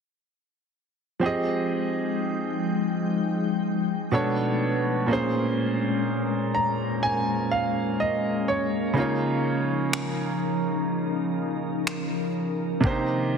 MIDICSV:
0, 0, Header, 1, 4, 480
1, 0, Start_track
1, 0, Key_signature, -4, "minor"
1, 0, Tempo, 967742
1, 607, Time_signature, 4, 2, 24, 8
1, 6635, End_track
2, 0, Start_track
2, 0, Title_t, "Grand piano"
2, 0, Program_c, 0, 0
2, 593, Note_on_c, 0, 53, 62
2, 601, Note_on_c, 0, 60, 64
2, 608, Note_on_c, 0, 67, 60
2, 616, Note_on_c, 0, 68, 63
2, 624, Note_on_c, 0, 75, 77
2, 697, Control_c, 0, 64, 127
2, 2020, Note_off_c, 0, 53, 0
2, 2024, Note_off_c, 0, 60, 0
2, 2028, Note_off_c, 0, 67, 0
2, 2032, Note_off_c, 0, 68, 0
2, 2036, Note_off_c, 0, 75, 0
2, 2041, Note_on_c, 0, 47, 69
2, 2045, Note_on_c, 0, 59, 66
2, 2049, Note_on_c, 0, 62, 66
2, 2052, Note_on_c, 0, 69, 66
2, 2055, Control_c, 0, 64, 0
2, 2056, Note_on_c, 0, 73, 75
2, 2146, Control_c, 0, 64, 127
2, 2512, Note_on_c, 0, 46, 66
2, 2520, Note_on_c, 0, 58, 62
2, 2524, Note_off_c, 0, 47, 0
2, 2526, Note_off_c, 0, 59, 0
2, 2528, Note_off_c, 0, 62, 0
2, 2528, Note_on_c, 0, 61, 63
2, 2530, Note_off_c, 0, 69, 0
2, 2532, Note_off_c, 0, 73, 0
2, 2534, Control_c, 0, 64, 0
2, 2536, Note_on_c, 0, 68, 60
2, 2543, Note_on_c, 0, 72, 76
2, 2614, Control_c, 0, 64, 127
2, 3247, Note_on_c, 0, 82, 66
2, 3470, Note_off_c, 0, 82, 0
2, 3486, Note_on_c, 0, 80, 65
2, 3710, Note_off_c, 0, 80, 0
2, 3727, Note_on_c, 0, 77, 68
2, 3950, Note_off_c, 0, 77, 0
2, 3968, Note_on_c, 0, 75, 64
2, 4191, Note_off_c, 0, 75, 0
2, 4207, Note_on_c, 0, 73, 67
2, 4420, Note_off_c, 0, 46, 0
2, 4424, Note_off_c, 0, 58, 0
2, 4428, Note_off_c, 0, 61, 0
2, 4430, Note_off_c, 0, 73, 0
2, 4432, Note_off_c, 0, 68, 0
2, 4432, Note_on_c, 0, 49, 71
2, 4436, Note_off_c, 0, 72, 0
2, 4439, Note_on_c, 0, 58, 63
2, 4447, Note_on_c, 0, 63, 61
2, 4454, Control_c, 0, 64, 0
2, 4455, Note_on_c, 0, 65, 64
2, 4462, Note_on_c, 0, 73, 72
2, 4530, Control_c, 0, 64, 127
2, 6340, Note_off_c, 0, 49, 0
2, 6343, Note_off_c, 0, 58, 0
2, 6347, Note_off_c, 0, 63, 0
2, 6351, Note_off_c, 0, 65, 0
2, 6351, Note_on_c, 0, 48, 72
2, 6355, Note_off_c, 0, 73, 0
2, 6359, Note_on_c, 0, 58, 61
2, 6367, Note_on_c, 0, 62, 51
2, 6373, Control_c, 0, 64, 0
2, 6375, Note_on_c, 0, 67, 66
2, 6382, Note_on_c, 0, 72, 72
2, 6399, Note_on_c, 0, 63, 65
2, 6405, Note_off_c, 0, 62, 0
2, 6466, Control_c, 0, 64, 127
2, 6635, Note_off_c, 0, 48, 0
2, 6635, Note_off_c, 0, 58, 0
2, 6635, Note_off_c, 0, 63, 0
2, 6635, Note_off_c, 0, 67, 0
2, 6635, Note_off_c, 0, 72, 0
2, 6635, End_track
3, 0, Start_track
3, 0, Title_t, "Ambient pad"
3, 0, Program_c, 1, 92
3, 607, Note_on_c, 1, 56, 67
3, 607, Note_on_c, 1, 79, 87
3, 608, Note_on_c, 1, 53, 77
3, 609, Note_on_c, 1, 63, 70
3, 2033, Note_off_c, 1, 53, 0
3, 2033, Note_off_c, 1, 56, 0
3, 2033, Note_off_c, 1, 79, 0
3, 2034, Note_off_c, 1, 63, 0
3, 2045, Note_on_c, 1, 71, 86
3, 2046, Note_on_c, 1, 62, 64
3, 2047, Note_on_c, 1, 57, 74
3, 2522, Note_off_c, 1, 57, 0
3, 2522, Note_off_c, 1, 62, 0
3, 2522, Note_off_c, 1, 71, 0
3, 2527, Note_on_c, 1, 70, 85
3, 2528, Note_on_c, 1, 56, 78
3, 2529, Note_on_c, 1, 61, 72
3, 4428, Note_off_c, 1, 56, 0
3, 4447, Note_on_c, 1, 53, 80
3, 4448, Note_on_c, 1, 63, 70
3, 6348, Note_off_c, 1, 53, 0
3, 6349, Note_off_c, 1, 61, 0
3, 6349, Note_off_c, 1, 63, 0
3, 6364, Note_on_c, 1, 60, 72
3, 6365, Note_on_c, 1, 51, 80
3, 6635, Note_off_c, 1, 51, 0
3, 6635, Note_off_c, 1, 60, 0
3, 6635, Note_off_c, 1, 70, 0
3, 6635, End_track
4, 0, Start_track
4, 0, Title_t, "Drums"
4, 4927, Note_on_c, 9, 26, 107
4, 4977, Note_off_c, 9, 26, 0
4, 5888, Note_on_c, 9, 26, 112
4, 5937, Note_off_c, 9, 26, 0
4, 6367, Note_on_c, 9, 36, 96
4, 6417, Note_off_c, 9, 36, 0
4, 6635, End_track
0, 0, End_of_file